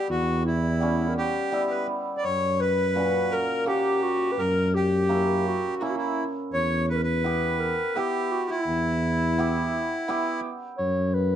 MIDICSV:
0, 0, Header, 1, 5, 480
1, 0, Start_track
1, 0, Tempo, 712589
1, 63, Time_signature, 3, 2, 24, 8
1, 7650, End_track
2, 0, Start_track
2, 0, Title_t, "Clarinet"
2, 0, Program_c, 0, 71
2, 66, Note_on_c, 0, 66, 70
2, 306, Note_on_c, 0, 64, 69
2, 316, Note_off_c, 0, 66, 0
2, 729, Note_on_c, 0, 70, 55
2, 739, Note_off_c, 0, 64, 0
2, 796, Note_on_c, 0, 67, 75
2, 807, Note_off_c, 0, 70, 0
2, 1273, Note_off_c, 0, 67, 0
2, 1458, Note_on_c, 0, 74, 66
2, 1507, Note_on_c, 0, 73, 89
2, 1517, Note_off_c, 0, 74, 0
2, 1752, Note_on_c, 0, 71, 93
2, 1762, Note_off_c, 0, 73, 0
2, 2233, Note_off_c, 0, 71, 0
2, 2238, Note_on_c, 0, 70, 91
2, 2476, Note_on_c, 0, 67, 91
2, 2486, Note_off_c, 0, 70, 0
2, 2712, Note_on_c, 0, 66, 99
2, 2722, Note_off_c, 0, 67, 0
2, 2908, Note_on_c, 0, 71, 67
2, 2918, Note_off_c, 0, 66, 0
2, 2955, Note_on_c, 0, 70, 104
2, 2966, Note_off_c, 0, 71, 0
2, 3194, Note_on_c, 0, 67, 88
2, 3204, Note_off_c, 0, 70, 0
2, 3676, Note_off_c, 0, 67, 0
2, 3683, Note_on_c, 0, 66, 84
2, 3922, Note_on_c, 0, 64, 75
2, 3932, Note_off_c, 0, 66, 0
2, 3974, Note_on_c, 0, 66, 68
2, 3984, Note_off_c, 0, 64, 0
2, 4015, Note_on_c, 0, 64, 80
2, 4025, Note_off_c, 0, 66, 0
2, 4215, Note_off_c, 0, 64, 0
2, 4402, Note_on_c, 0, 73, 85
2, 4623, Note_off_c, 0, 73, 0
2, 4655, Note_on_c, 0, 71, 72
2, 4686, Note_on_c, 0, 70, 75
2, 4696, Note_off_c, 0, 71, 0
2, 4733, Note_on_c, 0, 71, 94
2, 4743, Note_off_c, 0, 70, 0
2, 5117, Note_on_c, 0, 70, 87
2, 5127, Note_off_c, 0, 71, 0
2, 5367, Note_on_c, 0, 67, 75
2, 5377, Note_off_c, 0, 70, 0
2, 5603, Note_on_c, 0, 66, 82
2, 5613, Note_off_c, 0, 67, 0
2, 5715, Note_on_c, 0, 64, 87
2, 5725, Note_off_c, 0, 66, 0
2, 7030, Note_off_c, 0, 64, 0
2, 7260, Note_on_c, 0, 73, 87
2, 7503, Note_on_c, 0, 71, 84
2, 7513, Note_off_c, 0, 73, 0
2, 7650, Note_off_c, 0, 71, 0
2, 7650, End_track
3, 0, Start_track
3, 0, Title_t, "Accordion"
3, 0, Program_c, 1, 21
3, 71, Note_on_c, 1, 66, 75
3, 291, Note_off_c, 1, 66, 0
3, 315, Note_on_c, 1, 64, 70
3, 764, Note_off_c, 1, 64, 0
3, 793, Note_on_c, 1, 67, 85
3, 1147, Note_on_c, 1, 71, 57
3, 1162, Note_off_c, 1, 67, 0
3, 1259, Note_off_c, 1, 71, 0
3, 1465, Note_on_c, 1, 74, 66
3, 1508, Note_on_c, 1, 73, 82
3, 1510, Note_off_c, 1, 74, 0
3, 1756, Note_off_c, 1, 73, 0
3, 1756, Note_on_c, 1, 71, 77
3, 2231, Note_on_c, 1, 70, 85
3, 2249, Note_off_c, 1, 71, 0
3, 2456, Note_off_c, 1, 70, 0
3, 2478, Note_on_c, 1, 67, 82
3, 2955, Note_on_c, 1, 70, 83
3, 2971, Note_off_c, 1, 67, 0
3, 3179, Note_off_c, 1, 70, 0
3, 3204, Note_on_c, 1, 67, 76
3, 3871, Note_off_c, 1, 67, 0
3, 3901, Note_on_c, 1, 66, 45
3, 3921, Note_off_c, 1, 66, 0
3, 3926, Note_on_c, 1, 64, 66
3, 4010, Note_off_c, 1, 64, 0
3, 4021, Note_on_c, 1, 64, 59
3, 4204, Note_off_c, 1, 64, 0
3, 4399, Note_on_c, 1, 73, 97
3, 4622, Note_off_c, 1, 73, 0
3, 4645, Note_on_c, 1, 71, 72
3, 4725, Note_off_c, 1, 71, 0
3, 4736, Note_on_c, 1, 71, 75
3, 5357, Note_on_c, 1, 67, 72
3, 5377, Note_off_c, 1, 71, 0
3, 5725, Note_on_c, 1, 64, 75
3, 5727, Note_off_c, 1, 67, 0
3, 7008, Note_off_c, 1, 64, 0
3, 7650, End_track
4, 0, Start_track
4, 0, Title_t, "Hammered dulcimer"
4, 0, Program_c, 2, 15
4, 0, Note_on_c, 2, 55, 62
4, 534, Note_off_c, 2, 55, 0
4, 542, Note_on_c, 2, 55, 59
4, 548, Note_on_c, 2, 59, 54
4, 556, Note_on_c, 2, 61, 61
4, 787, Note_off_c, 2, 59, 0
4, 791, Note_off_c, 2, 61, 0
4, 1016, Note_off_c, 2, 55, 0
4, 1024, Note_on_c, 2, 55, 61
4, 1024, Note_on_c, 2, 59, 56
4, 1032, Note_on_c, 2, 64, 59
4, 1266, Note_off_c, 2, 59, 0
4, 1270, Note_off_c, 2, 64, 0
4, 1542, Note_off_c, 2, 55, 0
4, 1988, Note_on_c, 2, 46, 57
4, 1994, Note_on_c, 2, 61, 53
4, 1998, Note_on_c, 2, 66, 65
4, 2233, Note_off_c, 2, 61, 0
4, 2235, Note_off_c, 2, 66, 0
4, 2464, Note_on_c, 2, 58, 61
4, 2468, Note_on_c, 2, 61, 55
4, 2474, Note_on_c, 2, 78, 68
4, 2709, Note_off_c, 2, 58, 0
4, 2711, Note_off_c, 2, 61, 0
4, 2714, Note_off_c, 2, 78, 0
4, 3428, Note_on_c, 2, 58, 65
4, 3435, Note_on_c, 2, 61, 52
4, 3437, Note_on_c, 2, 64, 61
4, 3672, Note_off_c, 2, 58, 0
4, 3676, Note_off_c, 2, 61, 0
4, 3677, Note_off_c, 2, 64, 0
4, 3912, Note_on_c, 2, 58, 53
4, 3919, Note_on_c, 2, 61, 61
4, 3924, Note_on_c, 2, 64, 66
4, 4155, Note_off_c, 2, 58, 0
4, 4158, Note_off_c, 2, 61, 0
4, 4161, Note_off_c, 2, 64, 0
4, 4431, Note_off_c, 2, 46, 0
4, 4878, Note_on_c, 2, 59, 64
4, 4881, Note_on_c, 2, 64, 50
4, 4889, Note_on_c, 2, 67, 63
4, 5118, Note_off_c, 2, 59, 0
4, 5119, Note_off_c, 2, 64, 0
4, 5123, Note_off_c, 2, 67, 0
4, 5358, Note_on_c, 2, 59, 60
4, 5365, Note_on_c, 2, 64, 65
4, 5369, Note_on_c, 2, 67, 68
4, 5597, Note_off_c, 2, 59, 0
4, 5601, Note_off_c, 2, 64, 0
4, 5602, Note_off_c, 2, 67, 0
4, 6320, Note_on_c, 2, 59, 70
4, 6325, Note_on_c, 2, 64, 68
4, 6330, Note_on_c, 2, 67, 77
4, 6556, Note_off_c, 2, 59, 0
4, 6559, Note_off_c, 2, 64, 0
4, 6561, Note_off_c, 2, 67, 0
4, 6791, Note_on_c, 2, 59, 68
4, 6794, Note_on_c, 2, 64, 72
4, 6801, Note_on_c, 2, 67, 81
4, 7030, Note_off_c, 2, 59, 0
4, 7032, Note_off_c, 2, 64, 0
4, 7035, Note_off_c, 2, 67, 0
4, 7650, End_track
5, 0, Start_track
5, 0, Title_t, "Tuba"
5, 0, Program_c, 3, 58
5, 65, Note_on_c, 3, 40, 110
5, 932, Note_off_c, 3, 40, 0
5, 1517, Note_on_c, 3, 42, 81
5, 2382, Note_off_c, 3, 42, 0
5, 2955, Note_on_c, 3, 42, 106
5, 3821, Note_off_c, 3, 42, 0
5, 4394, Note_on_c, 3, 40, 99
5, 5258, Note_off_c, 3, 40, 0
5, 5835, Note_on_c, 3, 40, 100
5, 6695, Note_off_c, 3, 40, 0
5, 7273, Note_on_c, 3, 42, 100
5, 7650, Note_off_c, 3, 42, 0
5, 7650, End_track
0, 0, End_of_file